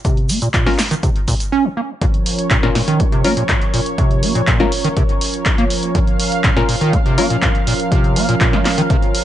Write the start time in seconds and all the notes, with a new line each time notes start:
0.05 C3, kick, closed hi-hat, shaker
0.17 closed hi-hat
0.29 A#3, open hi-hat, shaker
0.42 A#2, closed hi-hat, shaker
0.54 A#2, kick, clap, closed hi-hat, shaker
0.66 A#3 C#4 F4 A#4, snare, open hi-hat
0.78 snare, clap, open hi-hat, shaker
0.91 D#3, closed hi-hat, shaker
1.03 C3, kick, closed hi-hat, shaker
1.16 closed hi-hat
1.28 A#2, kick, open hi-hat, shaker
1.40 closed hi-hat, shaker
1.52 C#4
1.65 D#3
1.77 A#3
2.01 A#2 F3 C#4 A#4 C#5, kick, closed hi-hat
2.14 closed hi-hat
2.26 open hi-hat
2.39 closed hi-hat
2.50 A#2, kick, clap, closed hi-hat
2.63 A#2 C#4 F4 A#4, snare, closed hi-hat
2.75 A#2, snare, open hi-hat
2.88 D#3, closed hi-hat
3.00 A#3, kick, closed hi-hat
3.12 C3, closed hi-hat
3.24 A#3 C#4 F4 A#4, open hi-hat
3.37 A#2, closed hi-hat
3.49 A#2, kick, clap, closed hi-hat
3.62 closed hi-hat
3.74 A#2, open hi-hat
3.86 closed hi-hat
3.98 C3, kick, closed hi-hat
4.11 closed hi-hat
4.23 A#3, open hi-hat
4.35 A#2, closed hi-hat
4.47 A#2, kick, clap, closed hi-hat
4.60 A#3 C#4 F4 A#4, snare, closed hi-hat
4.72 open hi-hat
4.84 D#3, closed hi-hat
4.96 C3, kick, closed hi-hat
5.09 closed hi-hat
5.21 open hi-hat
5.34 closed hi-hat
5.46 kick, clap, closed hi-hat
5.58 A#3, closed hi-hat
5.70 open hi-hat
5.83 closed hi-hat
5.95 A#2 F5, kick, closed hi-hat
6.07 closed hi-hat
6.20 open hi-hat
6.32 closed hi-hat
6.44 A#2, kick, clap, closed hi-hat
6.57 A#2 C#4 F4 A#4, snare, closed hi-hat
6.69 A#2, open hi-hat
6.81 D#3, closed hi-hat
6.93 A#3, kick, closed hi-hat
7.06 C3, closed hi-hat
7.18 A#3 C#4 F4 A#4, open hi-hat
7.30 A#2, closed hi-hat
7.42 A#2, kick, clap, closed hi-hat
7.55 closed hi-hat
7.67 A#2, open hi-hat
7.80 closed hi-hat
7.92 C3, kick, closed hi-hat
8.04 closed hi-hat
8.16 A#3, open hi-hat
8.29 A#2, closed hi-hat
8.41 A#2, kick, clap, closed hi-hat
8.53 A#3, snare, closed hi-hat
8.65 snare, clap, open hi-hat
8.78 D#3, closed hi-hat
8.90 C3, kick, closed hi-hat
9.02 closed hi-hat
9.15 open hi-hat